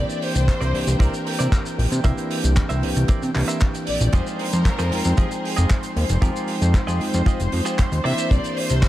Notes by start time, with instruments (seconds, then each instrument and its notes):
Already playing: tine electric piano E3 A#3 C4 D4 G4, clean electric guitar E4 A#4 C5 D5, violin section D5, analog synth pad G5
0.09 closed hi-hat, shaker
0.22 violin section C5, open hi-hat
0.35 analog synth bass C2, closed hi-hat, shaker
0.48 kick, clap, closed hi-hat, shaker
0.61 analog synth bass C2, clean electric guitar E4 A#4 C5 D5, closed hi-hat, shaker
0.73 analog synth bass C2, tine electric piano E3 A#3 C4 D4 G4, open hi-hat
0.87 analog synth bass C2, closed hi-hat, shaker
0.99 analog synth bass C2, clean electric guitar E4 A#4 C5 D5, violin section A#4, kick, closed hi-hat, shaker
1.14 closed hi-hat, shaker
1.26 muted clean electric guitar stroke, open hi-hat
1.39 analog synth bass C3, clean electric guitar E4 A#4 C5 D5, closed hi-hat, shaker
1.52 kick, clap, closed hi-hat, shaker
1.65 muted clean electric guitar stroke, closed hi-hat, shaker
1.78 analog synth bass A#1, open hi-hat
1.92 analog synth bass C3, closed hi-hat, shaker
2.03 analog synth bass C2, tine electric piano E3 A#3 C4 D4 G4, clean electric guitar E4 A#4 C5 E5, kick, closed hi-hat, shaker
2.18 closed hi-hat, shaker
2.31 open hi-hat
2.44 analog synth bass C2, closed hi-hat, shaker
2.56 kick, clap, closed hi-hat, shaker
2.69 analog synth bass C2, clean electric guitar E4 A#4 C5 E5, closed hi-hat, shaker
2.83 analog synth bass C2, tine electric piano E3 A#3 C4 D4 G4, open hi-hat
2.96 analog synth bass C2, closed hi-hat, shaker
3.08 clean electric guitar E4 A#4 C5 D5, kick, closed hi-hat, shaker
3.22 analog synth bass C3, closed hi-hat, shaker
3.34 analog synth bass C2, tine electric piano E3 A#3 C4 D4 G4, muted clean electric guitar stroke, clap, open hi-hat
3.48 clean electric guitar E4 A#4 C5 E5, closed hi-hat, shaker
3.60 kick, clap, closed hi-hat, shaker
3.74 muted clean electric guitar stroke, closed hi-hat, shaker
3.87 analog synth bass A#1, violin section D5, open hi-hat
4.01 analog synth bass A#1, closed hi-hat, shaker
4.12 analog synth bass F2, tine electric piano F3 G#3 C4 D#4 G5, clean electric guitar F4 G4 G#4 D#5, violin section C5, analog synth pad C5 C6, kick, closed hi-hat, shaker
4.27 closed hi-hat, shaker
4.39 violin section A#4, open hi-hat
4.53 analog synth bass F2, closed hi-hat, shaker
4.65 kick, clap, closed hi-hat, shaker
4.79 analog synth bass F2, clean electric guitar F4 G4 G#4 C5, closed hi-hat, shaker
4.91 analog synth bass F2, tine electric piano F3 G#3 C4 D#4 G5, open hi-hat
5.05 analog synth bass F2, closed hi-hat, shaker
5.17 analog synth bass F2, clean electric guitar F4 G4 G#4 D#5, violin section G#4, kick, closed hi-hat, shaker
5.31 closed hi-hat, shaker
5.44 muted clean electric guitar stroke, open hi-hat
5.56 analog synth bass F1, clean electric guitar F4 G4 G#4 D#5, closed hi-hat, shaker
5.70 kick, clap, closed hi-hat, shaker
5.83 muted clean electric guitar stroke, closed hi-hat, shaker
5.96 analog synth bass D#2, open hi-hat
6.09 analog synth bass F1, closed hi-hat, shaker
6.21 analog synth bass F2, tine electric piano F3 G#3 C4 D#4 G5, clean electric guitar F4 G4 G#4 A#4, kick, closed hi-hat, shaker
6.36 closed hi-hat, shaker
6.48 open hi-hat
6.62 analog synth bass F2, closed hi-hat, shaker
6.74 kick, clap, closed hi-hat, shaker
6.87 analog synth bass F2, clean electric guitar F4 G4 G#4 D#5, closed hi-hat, shaker
6.99 analog synth bass F2, tine electric piano F3 G#3 C4 D#4 G5, open hi-hat
7.14 analog synth bass F2, closed hi-hat, shaker
7.26 clean electric guitar F4 G4 G#4 D#5, kick, closed hi-hat, shaker
7.40 analog synth bass F1, closed hi-hat, shaker
7.52 analog synth bass F2, muted clean electric guitar stroke, open hi-hat
7.65 clean electric guitar F4 G4 G#4 C5, closed hi-hat, shaker
7.79 kick, clap, closed hi-hat, shaker
7.91 analog synth bass D#2, muted clean electric guitar stroke, closed hi-hat, shaker
8.04 analog synth bass C3, tine electric piano E3 A#3 C4 D4 E4, clean electric guitar E4 A#4 C5 D5, violin section E5, open hi-hat
8.18 closed hi-hat, shaker
8.30 analog synth bass C2, tine electric piano E3 A#3 C4 D4 G4, violin section D5, kick, closed hi-hat, shaker
8.44 closed hi-hat, shaker
8.57 violin section C5, open hi-hat
8.70 analog synth bass C2, closed hi-hat, shaker
8.83 kick, clap, closed hi-hat, shaker